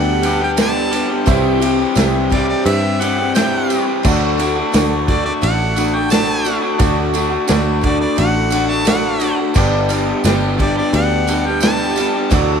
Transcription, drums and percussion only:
0.23 ride, tambourine
0.57 snare, ride, tambourine
0.93 ride, tambourine
1.26 kick, ride, tambourine
1.62 ride, tambourine
1.95 snare, ride, tambourine
2.30 kick, ride, tambourine
2.66 ride, tambourine
3.01 ride, tambourine
3.35 snare, ride, tambourine
3.70 ride, tambourine
4.04 kick, tambourine, crash
4.39 ride, tambourine
4.73 snare, ride, tambourine
5.08 kick, ride, tambourine
5.42 ride, tambourine
5.76 ride, tambourine
6.10 snare, ride, tambourine
6.44 ride, tambourine
6.79 kick, ride, tambourine
7.14 ride, tambourine
7.48 snare, ride, tambourine
7.81 kick, ride, tambourine
8.16 ride, tambourine
8.50 ride, tambourine
8.85 snare, ride, tambourine
9.20 ride, tambourine
9.54 kick, tambourine, crash
9.89 ride, tambourine
10.24 snare, ride, tambourine
10.59 kick, ride, tambourine
10.93 ride, tambourine
11.27 ride, tambourine
11.61 snare, ride, tambourine
11.96 ride, tambourine
12.31 kick, ride, tambourine

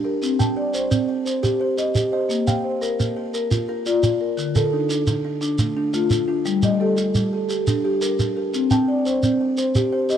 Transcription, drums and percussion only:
0.23 shekere
0.40 shekere
0.74 shekere
0.91 shekere
1.26 shekere
1.44 shekere
1.78 shekere
1.95 shekere
2.30 shekere
2.48 shekere
2.82 shekere
3.00 shekere
3.34 shekere
3.51 shekere
3.86 shekere
4.03 shekere
4.38 shekere
4.56 shekere
4.90 shekere
5.07 shekere
5.42 shekere
5.59 shekere
5.94 shekere
6.10 shekere
6.46 shekere
6.63 shekere
6.97 shekere
7.15 shekere
7.50 shekere
7.67 shekere
8.02 shekere
8.19 shekere
8.54 shekere
8.71 shekere
9.06 shekere
9.23 shekere
9.57 shekere
9.75 shekere
10.10 shekere

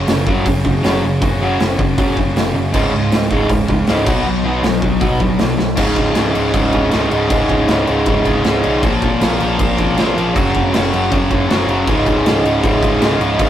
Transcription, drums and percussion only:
0.07 snare, open hi-hat
0.27 kick
0.46 kick, open hi-hat
0.65 kick
0.84 snare, open hi-hat
1.22 kick, open hi-hat
1.60 snare, open hi-hat
1.79 kick
1.98 kick, open hi-hat
2.17 kick
2.36 snare, open hi-hat
2.74 kick, crash
3.12 snare, open hi-hat
3.31 kick
3.49 kick, open hi-hat
3.68 kick
3.87 snare, open hi-hat
4.06 kick, crash
4.64 snare, open hi-hat
4.82 kick
5.01 kick, open hi-hat
5.20 kick
5.39 snare, open hi-hat
5.59 snare
5.77 kick, crash
5.96 kick, crash
6.15 snare, crash
6.35 crash
6.54 kick, crash
6.72 kick, crash
6.91 snare, crash
7.11 crash
7.30 kick, crash
7.49 kick, crash
7.68 snare, crash
7.87 crash
8.06 kick, crash
8.25 kick, crash
8.44 snare, crash
8.63 crash
8.83 kick, crash
9.02 kick, crash
9.21 snare, crash
9.40 crash
9.59 kick, crash
9.78 kick, crash
9.97 snare, crash
10.18 crash
10.36 kick, crash
10.55 kick, crash
10.74 snare, crash
10.93 crash
11.12 kick, crash
11.31 kick, crash
11.50 snare, crash
11.68 crash
11.87 kick, crash
12.06 kick, crash
12.26 snare, crash
12.45 crash
12.64 kick, crash
12.83 kick, crash
13.02 snare, crash
13.21 crash
13.39 kick, crash

